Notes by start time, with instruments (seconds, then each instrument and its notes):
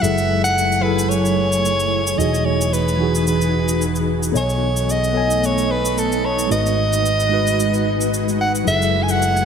0.00 fretless electric bass F#1, tine electric piano F#3 E4 G#4 A4, ambient pad F#3 A3 E4 G#5, soprano saxophone E5, shaker
0.18 shaker
0.44 soprano saxophone F#5, shaker
0.58 shaker
0.72 shaker
0.81 tine electric piano F#3 E4 G#4, soprano saxophone B4
0.85 tine electric piano A4
0.99 shaker
1.09 soprano saxophone C#5, shaker
1.25 shaker
1.52 shaker
1.65 shaker
1.80 shaker
2.07 shaker
2.17 fretless electric bass E1, tine electric piano E3 D#4 F#4, ambient pad E3 D#4 F#4 G#4, soprano saxophone D#5, shaker
2.21 tine electric piano G#4
2.34 shaker
2.45 soprano saxophone C#5
2.61 shaker
2.74 soprano saxophone B4, shaker
2.88 shaker
2.97 tine electric piano E3 D#4 F#4
3.02 tine electric piano G#4
3.15 shaker
3.27 soprano saxophone B4, shaker
3.41 shaker
3.68 shaker
3.82 shaker
3.95 shaker
4.23 shaker
4.32 fretless electric bass B1, ambient pad A3 B3 D#4, tine electric piano B3 A4 C#5 D#5, shaker
4.37 soprano saxophone C#5, tine electric piano G#5
4.50 shaker
4.77 shaker
4.89 soprano saxophone D#5, shaker
5.04 shaker
5.12 tine electric piano B3 A4 C#5 D#5
5.17 tine electric piano G#5
5.31 shaker
5.44 soprano saxophone C#5, shaker
5.58 shaker
5.72 soprano saxophone B4
5.85 shaker
5.98 soprano saxophone A4, shaker
6.12 shaker
6.25 soprano saxophone C#5
6.39 shaker
6.48 fretless electric bass G#1, tine electric piano G#3 D#4 F#4, ambient pad G#3 F#4 B4
6.52 tine electric piano B4, soprano saxophone D#5, shaker
6.66 shaker
6.93 shaker
7.06 shaker
7.20 shaker
7.29 tine electric piano G#3 D#4 F#4
7.34 tine electric piano B4
7.47 shaker
7.60 shaker
7.74 shaker
8.01 shaker
8.14 shaker
8.29 shaker
8.41 soprano saxophone F#5
8.55 shaker
8.64 fretless electric bass F#1, tine electric piano F#3 E4 G#4, ambient pad F#3 A3 E4 G#5, soprano saxophone E5, shaker
8.68 tine electric piano A4
8.82 shaker
9.03 soprano saxophone G#5
9.09 soprano saxophone F#5, shaker
9.22 shaker
9.37 shaker